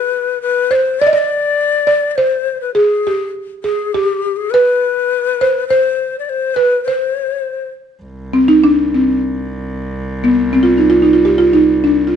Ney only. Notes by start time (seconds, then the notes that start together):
Already playing: B4
0.42 B4
0.71 D5
0.75 C5
1.00 D5
1.14 D#5
1.18 D5
2.11 D5
2.16 C5
2.61 B4
2.75 G#4
3.64 G#4
3.93 G4
4.36 G#4
4.52 B4
5.68 C5
6.19 D5
6.25 D5
6.29 C5
6.55 B4
6.84 C5